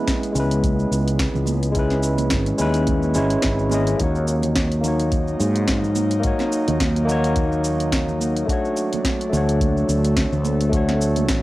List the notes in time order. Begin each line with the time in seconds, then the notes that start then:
Already playing: G#3 B3 C#4 E4 B4
0.08 kick, snare, closed hi-hat, shaker
0.23 closed hi-hat, shaker
0.32 C#2 G#3 C#4, low conga, shaker
0.37 E4 B4
0.51 closed hi-hat, shaker
0.63 kick, closed hi-hat, high conga, shaker
0.80 shaker
0.91 C#2, shaker
1.08 closed hi-hat, shaker
1.19 kick, snare, closed hi-hat, shaker
1.34 C#2, low conga, shaker
1.46 high conga, shaker
1.63 closed hi-hat, shaker
1.72 G#3 C#4, kick, closed hi-hat, shaker
1.77 C#4 E4 B4
1.90 snare, shaker
2.03 shaker
2.18 closed hi-hat, high conga, low conga, shaker
2.30 G#1, kick, snare, closed hi-hat, shaker
2.46 closed hi-hat, shaker
2.58 D#2 G#3 C#4 E4 B4, low conga, shaker
2.74 closed hi-hat, shaker
2.87 kick, closed hi-hat, high conga, shaker
3.03 shaker
3.14 G#1 G#3 C#4 E4 C#5, shaker
3.30 closed hi-hat, shaker
3.42 G#1, kick, snare, closed hi-hat, shaker
3.58 low conga, shaker
3.70 G#3 C#4 E4, high conga, shaker
3.74 D#5
3.87 closed hi-hat, shaker
3.96 D#2 F#3 A#3 D#4, kick, closed hi-hat, shaker
4.02 F#4 C#5
4.15 shaker
4.28 shaker
4.43 closed hi-hat, high conga, low conga, shaker
4.56 kick, snare, closed hi-hat, shaker
4.72 closed hi-hat, shaker
4.81 A#3 D#4, muted conga, low conga, shaker
4.85 F#4 C#5
4.99 closed hi-hat, shaker
5.11 kick, closed hi-hat, high conga, shaker
5.28 shaker
5.40 G#2, shaker
5.56 closed hi-hat, shaker
5.68 kick, snare, closed hi-hat, shaker
5.82 low conga, shaker
5.95 high conga, shaker
6.11 closed hi-hat, shaker
6.20 A#3 D#4, closed hi-hat
6.24 F#4 C#5, kick, shaker
6.39 snare, muted conga, shaker
6.52 shaker
6.68 D#2, closed hi-hat, high conga, low conga, shaker
6.80 kick, snare, closed hi-hat, shaker
6.96 closed hi-hat, shaker
7.05 A#3 D#4, low conga
7.09 F#4 C#5, muted conga, shaker
7.24 closed hi-hat, shaker
7.36 kick, closed hi-hat, high conga, shaker
7.52 shaker
7.64 shaker
7.80 closed hi-hat, shaker
7.92 kick, snare, closed hi-hat, shaker
8.08 low conga, shaker
8.21 high conga, shaker
8.36 closed hi-hat, shaker
8.45 A3 D4, kick
8.49 F#4 C#5, closed hi-hat, shaker
8.65 shaker
8.77 shaker
8.93 closed hi-hat, high conga, low conga, shaker
9.05 kick, snare, closed hi-hat, shaker
9.21 closed hi-hat, shaker
9.29 D2 A3 D4, muted conga, low conga
9.34 F#4 C#5, shaker
9.49 closed hi-hat, shaker
9.61 kick, closed hi-hat, high conga, shaker
9.77 shaker
9.89 D2, shaker
10.05 closed hi-hat, shaker
10.17 kick, snare, closed hi-hat, shaker
10.32 D2, low conga, shaker
10.45 high conga, shaker
10.61 closed hi-hat, shaker
10.69 A3 D4, kick, closed hi-hat
10.74 F#4 C#5, shaker
10.89 snare, closed hi-hat, muted conga, shaker
11.01 shaker
11.16 closed hi-hat, high conga, low conga, shaker
11.29 A1, kick, snare, closed hi-hat, shaker